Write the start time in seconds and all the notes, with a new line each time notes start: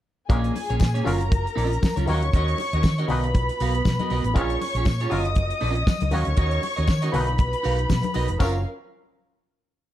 0.29 A#1 A#2 G#3 A#3 C#4 G#4 A#4 C#5 G#5, kick, closed hi-hat, muted conga
0.44 closed hi-hat
0.55 muted clean electric guitar stroke, open hi-hat, muted conga
0.70 A#1 A#3 C#4 G#4 C#5, closed hi-hat
0.80 A#2, muted clean electric guitar stroke, kick, snare, tambourine, high conga
0.94 A#3 C#4 G#4 C#5, closed hi-hat
1.04 F#1 F#3 C#4 F4 A#4 C#5 A#5, open hi-hat, low conga
1.19 muted clean electric guitar stroke, closed hi-hat
1.32 kick, closed hi-hat, muted conga
1.45 muted clean electric guitar stroke, closed hi-hat
1.55 A#1 C#4 F4 A#4 D#5, open hi-hat
1.70 muted clean electric guitar stroke, closed hi-hat
1.82 muted clean electric guitar stroke, kick, snare, tambourine, high conga
1.96 C#2 C#4 F4 A#4 C#5, closed hi-hat, high conga
2.06 D#2 D#3 A#3 C#4 F4 F#4 A#4 C#5 D#5 C#6, open hi-hat
2.14 F#4
2.22 D2, muted clean electric guitar stroke, closed hi-hat
2.33 D#2 C#4 F#4 A#4 D#5, kick, closed hi-hat, muted conga
2.48 closed hi-hat
2.58 muted clean electric guitar stroke, open hi-hat, muted conga
2.73 D#2 C#4 F#4 A#4 D#5, closed hi-hat
2.83 D#3, kick, snare, tambourine, high conga
2.98 C#4 F#4 A#4 D#5, closed hi-hat
3.08 B1 A#2 B2 B3 D#4 F#4 A#4 B4 D#5 B5, open hi-hat, low conga
3.24 muted clean electric guitar stroke, closed hi-hat
3.35 kick, closed hi-hat, muted conga
3.49 muted clean electric guitar stroke, closed hi-hat
3.60 B1 B3 F#4 A#4 F5, open hi-hat
3.75 muted clean electric guitar stroke, closed hi-hat
3.85 B2, muted clean electric guitar stroke, kick, snare, tambourine, high conga
3.99 B3 F#4 A#4 D#5, closed hi-hat, high conga
4.10 B1 B3 F#4 A#4 D#5, open hi-hat
4.24 A1, muted clean electric guitar stroke, closed hi-hat
4.34 A#1 A#2 G#3 C4 C#4 F4 G#4 A#4 C#5 C#6, kick, closed hi-hat
4.41 C#4
4.50 closed hi-hat
4.61 muted clean electric guitar stroke, open hi-hat, muted conga
4.75 A#1 C#4 F4 G#4 C#5, closed hi-hat
4.85 A#2, muted clean electric guitar stroke, kick, snare, tambourine, high conga
5.00 C#4 F4 G#4 C#5, closed hi-hat
5.10 F#1 F#3 C#4 F4 A#4 C#5 D#5 D#6, open hi-hat, low conga
5.25 muted clean electric guitar stroke, closed hi-hat
5.35 kick, closed hi-hat, muted conga
5.50 muted clean electric guitar stroke, closed hi-hat
5.61 A#1 C#4 F4 A#4 D#5, open hi-hat
5.75 muted clean electric guitar stroke, closed hi-hat
5.87 muted clean electric guitar stroke, kick, snare, tambourine, high conga
6.00 C#2, muted clean electric guitar stroke, closed hi-hat, high conga
6.11 D#2 D#3 A#3 C#4 F#4 A#4 C#5 D#5 C#6, open hi-hat
6.25 D2, muted clean electric guitar stroke, closed hi-hat
6.37 D#2 C#4 F#4 A#4 D#5, kick, closed hi-hat
6.51 closed hi-hat
6.62 muted clean electric guitar stroke, open hi-hat, muted conga
6.76 D#2 C#4 F#4 A#4 D#5, closed hi-hat
6.88 D#3, muted clean electric guitar stroke, kick, snare, tambourine, high conga
7.02 C#4 F#4 A#4 D#5, closed hi-hat
7.12 B1 A#2 B2 C#4 D#4 F#4 A#4 B4 D#5 B5, open hi-hat, low conga
7.20 D#4
7.27 muted clean electric guitar stroke, closed hi-hat
7.38 kick, closed hi-hat, muted conga
7.52 muted clean electric guitar stroke, closed hi-hat
7.63 B1 D#4 F#4 A#4 F5, open hi-hat
7.78 muted clean electric guitar stroke, closed hi-hat
7.90 B2, kick, snare, tambourine, high conga
8.02 muted clean electric guitar stroke, closed hi-hat, high conga
8.14 B1 D#4 F#4 A#4 D#5, open hi-hat
8.28 F1, muted clean electric guitar stroke, closed hi-hat
8.39 F#1 F#3 C#4 F4 A#4 C#5 F5, kick, crash, tambourine, muted conga